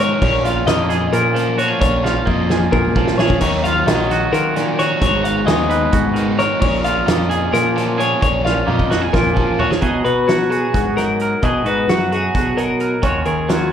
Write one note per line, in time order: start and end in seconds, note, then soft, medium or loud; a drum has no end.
0.00 0.13 G#2 medium
0.00 0.19 G#2 medium
0.00 0.20 G#2 loud
0.00 0.19 D#3 medium
0.00 0.21 D#3 medium
0.00 0.25 G#3 medium
0.00 0.23 G#3 loud
0.00 0.22 B3 loud
0.00 0.22 D#4 loud
0.00 0.19 F#4 medium
0.00 0.89 A#4 medium
0.00 0.21 C#5 medium
0.22 0.62 A#1 loud
0.22 1.78 A#2 medium
0.22 0.67 A#2 loud
0.22 0.48 F3 loud
0.22 0.46 A#3 loud
0.22 0.44 C#4 loud
0.22 0.45 C#5 loud
0.22 kick loud
0.22 crash medium
0.44 0.68 F3 medium
0.44 0.69 A#3 medium
0.44 0.70 C#4 medium
0.44 1.13 F4 medium
0.44 0.67 F5 medium
0.44 snare soft
0.44 closed hi-hat medium
0.66 1.07 F2 loud
0.66 1.57 A#2 medium
0.66 1.39 F3 medium
0.66 2.25 A#3 medium
0.66 1.38 A#3 medium
0.66 1.13 D#5 medium
0.66 snare loud
0.66 closed hi-hat loud
0.71 1.36 C#4 medium
0.90 1.57 G#4 medium
0.90 snare soft
0.90 closed hi-hat medium
1.13 1.73 A#2 loud
1.13 2.03 F4 medium
1.13 1.59 A#4 medium
1.13 closed hi-hat loud
1.34 2.96 F3 medium
1.34 1.60 A#3 medium
1.34 1.62 C#4 medium
1.34 closed hi-hat medium
1.40 1.59 F3 medium
1.58 1.80 A#2 medium
1.58 1.82 F3 loud
1.58 1.84 A#3 loud
1.58 1.68 F#4 medium
1.58 1.80 C#5 medium
1.58 closed hi-hat medium
1.62 1.84 C#4 loud
1.68 1.81 G#4 medium
1.79 2.21 A#1 loud
1.79 3.38 A#2 medium
1.79 2.26 A#2 medium
1.79 2.07 F3 loud
1.79 2.04 C#5 loud
1.79 kick loud
1.79 closed hi-hat medium
1.84 2.06 A#3 loud
1.84 2.04 C#4 loud
2.04 2.29 A#3 medium
2.04 2.30 C#4 medium
2.04 2.73 F4 medium
2.04 2.27 F5 medium
2.04 snare medium
2.08 2.28 F3 medium
2.26 2.67 F2 loud
2.26 3.17 A#2 medium
2.26 2.98 F3 medium
2.26 3.86 A#3 medium
2.26 2.98 A#3 medium
2.26 2.73 D#5 medium
2.26 kick medium
2.31 2.95 C#4 medium
2.50 3.19 G#4 medium
2.50 snare medium
2.72 3.33 A#2 loud
2.72 3.39 F4 medium
2.72 3.18 A#4 medium
2.72 kick loud
2.72 mid tom medium
2.85 mid tom medium
2.96 3.39 F3 medium
2.96 3.19 F3 medium
2.96 3.20 A#3 medium
2.96 3.21 C#4 medium
2.96 kick medium
3.07 snare medium
3.18 3.40 A#2 medium
3.18 3.41 F3 medium
3.18 3.44 A#3 medium
3.18 3.39 G#4 medium
3.18 3.40 C#5 medium
3.18 snare loud
3.22 3.42 C#4 loud
3.30 kick loud
3.41 3.82 D#2 loud
3.41 4.99 D#3 medium
3.41 3.86 D#3 loud
3.41 3.68 F#3 loud
3.41 3.66 A#3 loud
3.41 3.63 C#5 medium
3.41 kick medium
3.41 closed hi-hat medium
3.41 crash medium
3.45 3.64 D#4 loud
3.64 3.90 A#3 medium
3.64 3.91 D#4 medium
3.64 4.32 F4 medium
3.64 3.87 F5 medium
3.64 snare soft
3.64 closed hi-hat medium
3.68 3.89 F#3 medium
3.86 4.27 A#1 loud
3.86 4.77 D#3 medium
3.86 5.45 F#3 medium
3.86 4.59 F#3 medium
3.86 4.58 A#3 medium
3.86 4.33 D#5 medium
3.86 snare loud
3.86 closed hi-hat loud
3.91 4.55 D#4 medium
4.11 4.78 F#4 medium
4.11 snare soft
4.11 closed hi-hat medium
4.33 4.93 D#3 medium
4.33 4.99 F4 medium
4.33 4.79 A#4 medium
4.33 closed hi-hat medium
4.55 4.99 A#2 medium
4.55 4.81 A#3 medium
4.55 4.80 D#4 medium
4.55 snare soft
4.55 closed hi-hat medium
4.60 4.78 F#3 medium
4.78 5.00 D#3 medium
4.78 5.01 F#3 loud
4.78 5.04 A#3 medium
4.78 5.02 D#4 loud
4.78 5.22 F#4 medium
4.78 5.00 C#5 medium
4.78 snare soft
4.78 closed hi-hat medium
5.01 5.42 G#1 loud
5.01 5.47 G#2 loud
5.01 6.59 G#2 medium
5.01 5.47 D#3 loud
5.01 5.28 G#3 loud
5.01 5.26 B3 loud
5.01 5.24 D#4 loud
5.01 5.24 C#5 loud
5.01 kick loud
5.01 closed hi-hat medium
5.23 5.49 B3 medium
5.23 5.50 D#4 medium
5.23 5.92 F#4 medium
5.23 5.46 F5 medium
5.23 closed hi-hat medium
5.28 5.49 G#3 medium
5.46 5.87 D#2 loud
5.46 6.38 D#3 medium
5.46 6.63 G#3 medium
5.46 5.93 D#5 medium
5.46 snare loud
5.46 closed hi-hat medium
5.50 6.19 G#3 medium
5.50 6.17 B3 medium
5.50 6.15 D#4 medium
5.70 6.38 B4 medium
5.70 closed hi-hat medium
5.93 6.53 G#2 medium
5.93 6.59 F#4 medium
5.93 kick loud
5.93 closed hi-hat loud
6.14 6.58 D#3 medium
6.14 6.41 D#4 medium
6.14 closed hi-hat medium
6.18 6.40 G#3 medium
6.18 6.40 B3 medium
6.38 6.60 G#2 medium
6.38 6.61 D#3 loud
6.38 6.62 G#3 loud
6.38 6.62 B3 loud
6.38 6.62 D#4 loud
6.38 7.29 A#4 medium
6.38 6.60 C#5 medium
6.38 snare soft
6.38 closed hi-hat medium
6.60 7.02 A#1 loud
6.60 8.18 A#2 medium
6.60 7.07 A#2 loud
6.60 6.88 F3 loud
6.60 6.84 C#5 medium
6.60 kick loud
6.60 crash medium
6.64 6.86 A#3 loud
6.64 6.85 C#4 loud
6.84 7.09 A#3 medium
6.84 7.10 C#4 medium
6.84 7.52 F4 medium
6.84 7.07 F5 medium
6.84 snare soft
6.84 closed hi-hat medium
6.88 7.08 F3 medium
7.06 7.48 F2 loud
7.06 7.97 A#2 medium
7.06 7.78 F3 medium
7.06 8.18 A#3 medium
7.06 7.76 A#3 medium
7.06 7.53 D#5 medium
7.06 snare loud
7.06 closed hi-hat loud
7.11 7.75 C#4 medium
7.30 7.98 G#4 medium
7.30 closed hi-hat medium
7.53 8.13 A#2 loud
7.53 8.19 F4 medium
7.53 7.99 A#4 medium
7.53 snare soft
7.53 closed hi-hat loud
7.76 8.19 F3 medium
7.76 7.99 F3 medium
7.76 8.00 A#3 medium
7.76 8.02 C#4 medium
7.76 snare soft
7.76 closed hi-hat medium
7.98 8.20 A#2 medium
7.98 8.22 F3 loud
7.98 8.23 A#3 loud
7.98 8.23 C#4 loud
7.98 8.25 G#4 medium
7.98 8.21 C#5 medium
7.98 closed hi-hat medium
8.21 8.62 A#1 loud
8.21 8.66 A#2 loud
8.21 9.79 A#2 medium
8.21 8.46 F3 loud
8.21 8.45 A#3 loud
8.21 8.42 C#4 loud
8.21 8.44 C#5 medium
8.21 kick loud
8.21 closed hi-hat medium
8.44 8.67 F3 medium
8.44 8.68 A#3 medium
8.44 8.69 C#4 medium
8.44 9.13 F4 medium
8.44 8.68 F5 medium
8.44 snare medium
8.67 9.08 F2 loud
8.67 9.57 A#2 medium
8.67 9.39 F3 medium
8.67 9.79 A#3 medium
8.67 9.36 A#3 medium
8.67 9.35 C#4 medium
8.67 9.13 D#5 medium
8.67 high tom medium
8.79 kick medium
8.90 9.02 F#4 medium
8.90 snare medium
9.02 9.59 G#4 medium
9.13 9.74 A#2 medium
9.13 9.80 F4 medium
9.13 9.59 A#4 medium
9.13 kick loud
9.13 snare medium
9.25 mid tom medium
9.35 9.79 F3 medium
9.35 9.60 A#3 medium
9.35 9.61 C#4 medium
9.35 kick medium
9.40 9.59 F3 medium
9.58 9.80 A#2 loud
9.58 9.81 F3 medium
9.58 9.82 A#3 loud
9.58 9.70 F#4 medium
9.58 9.82 C#5 medium
9.58 floor tom loud
9.62 9.82 C#4 loud
9.70 9.82 G#4 medium
9.70 snare medium
9.81 11.39 B2 medium
9.81 10.02 B2 medium
9.81 10.98 D#4 medium
9.81 10.05 F#4 medium
9.81 10.05 G#4 medium
9.81 10.04 D#5 medium
9.81 kick loud
9.81 closed hi-hat medium
10.05 10.65 B2 medium
10.05 10.28 F#4 medium
10.05 10.28 B4 medium
10.05 closed hi-hat medium
10.27 10.98 F#3 medium
10.27 10.50 F#4 medium
10.27 snare loud
10.27 closed hi-hat medium
10.50 10.74 F#4 medium
10.50 10.96 G#4 medium
10.50 closed hi-hat medium
10.74 11.34 G#2 medium
10.74 11.44 F#4 medium
10.74 kick loud
10.74 snare soft
10.74 closed hi-hat medium
10.97 11.48 F#3 medium
10.97 11.43 D#4 medium
10.97 11.43 A#4 medium
10.97 snare soft
10.97 closed hi-hat medium
11.20 11.41 A#4 medium
11.20 closed hi-hat medium
11.42 13.00 B2 medium
11.42 11.63 B2 medium
11.42 12.57 D#4 medium
11.42 11.66 F#4 medium
11.42 11.66 G#4 medium
11.42 11.66 D#5 medium
11.42 kick loud
11.42 closed hi-hat medium
11.64 11.85 G#2 medium
11.64 11.91 F#4 medium
11.64 11.89 B4 medium
11.64 closed hi-hat medium
11.88 12.28 F#2 medium
11.88 12.57 F#3 medium
11.88 12.12 F#4 medium
11.88 snare loud
11.88 closed hi-hat medium
12.12 12.35 F#4 medium
12.12 12.57 G#4 medium
12.12 closed hi-hat medium
12.35 12.95 B2 medium
12.35 13.04 F#4 medium
12.35 kick loud
12.35 snare soft
12.35 closed hi-hat medium
12.57 13.02 F#3 medium
12.57 13.03 D#4 medium
12.57 13.03 A#4 medium
12.57 closed hi-hat medium
12.80 13.01 A#4 medium
12.80 closed hi-hat medium
13.02 13.23 D#2 medium
13.02 13.72 D#3 medium
13.02 13.72 C#4 medium
13.02 13.49 F4 medium
13.02 13.25 F#4 medium
13.02 13.26 C#5 medium
13.02 kick loud
13.02 closed hi-hat medium
13.25 13.72 D#2 medium
13.25 13.71 G#4 medium
13.25 13.49 A#4 medium
13.25 closed hi-hat medium
13.49 13.72 F#3 medium
13.49 13.72 F4 medium
13.49 13.72 F#4 medium
13.49 snare loud
13.49 closed hi-hat medium